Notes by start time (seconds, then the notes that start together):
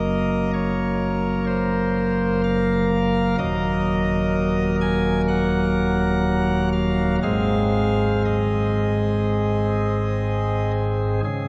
Already playing: F#1 F#2 A#3 A#4 D#5
0.54 C#5
1.47 C5
2.44 F5
3.38 D#1 D#2 F#3 A#3 A#4 D#5
4.81 G#5
5.28 F#5
6.73 F5
7.23 G#1 G#2 G#3 C4 G#4 F5
8.25 D#5
11.24 C#3 G#4